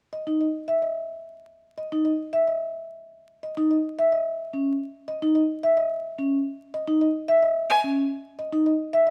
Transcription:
0.13 D#5
0.27 D#4
0.41 D#5
0.68 E5
0.82 D#5
1.78 D#5
1.92 D#4
2.05 D#5
2.33 E5
2.47 D#5
3.43 D#5
3.57 D#4
3.71 D#5
3.99 E5
4.12 D#5
4.53 C#4
5.08 D#5
5.22 D#4
5.35 D#5
5.63 E5
5.77 D#5
6.19 C#4
6.74 D#5
6.87 D#4
7.01 D#5
7.28 E5
7.43 D#5
7.70 G#5
7.84 C#4
8.39 D#5
8.53 D#4
8.66 D#5
8.93 E5
9.07 D#5

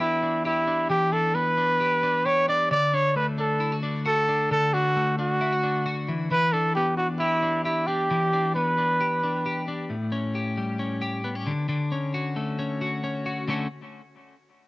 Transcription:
Already playing: E3 B3 D4
0.00 E4 G4
0.23 D4
0.45 E4 G4
0.68 D4
0.90 E3 G4
1.12 D4 A4
1.35 B3 B4
1.58 D4
1.80 G4
2.03 D4
2.25 G4 C#5
2.48 D4 D5
2.71 D3 D5
2.94 D4 C#5
3.16 A3 B4
3.38 D4 A4
3.60 E4
3.72 F#4
3.83 D4
4.05 F#4 A4
4.29 D4
4.51 D3 A4
4.74 D4 F#4
4.96 A3
5.19 D4 F#4
5.41 E4
5.53 F#4
5.64 D4
5.86 F#4
6.09 E3
6.31 E3 B4
6.53 D4 A4
6.75 B3 G4
6.97 D4 F#4
7.19 E4 G4
7.43 D4
7.64 E4 G4
7.87 D4 G4
8.11 E3
8.33 D4
8.55 B3 B4
8.78 D4
9.01 G4
9.23 D4
9.46 G4
9.68 D4
9.90 A2
10.12 C#4
10.35 G4
10.57 G3
10.79 C#4
11.02 G4
11.24 B3
11.35 C#4
11.47 D3
11.69 D3
11.92 C#4
12.14 F#4
12.36 A3
12.59 C#4
12.81 F#4
13.04 C#4
13.26 F#4
13.48 D3 A3 C#4 F#4

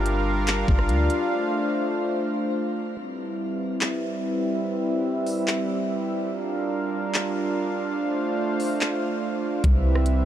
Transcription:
Already playing: G1 G3 D4 F4 A#4 F5
0.06 closed hi-hat
0.47 clap, closed hi-hat
0.68 G1, kick
0.79 cross-stick
0.89 D2, closed hi-hat
1.10 closed hi-hat
1.31 A3 C5
2.97 G3 C4 E4 B4 E5
3.81 clap
5.27 open hi-hat
5.48 clap
6.31 D4 F4 A#4 F5
7.14 clap
7.98 A3 C5
8.60 open hi-hat
8.81 clap
9.64 C2 G3 C4 E4 B4 E5, kick, closed hi-hat
9.95 cross-stick
10.06 closed hi-hat

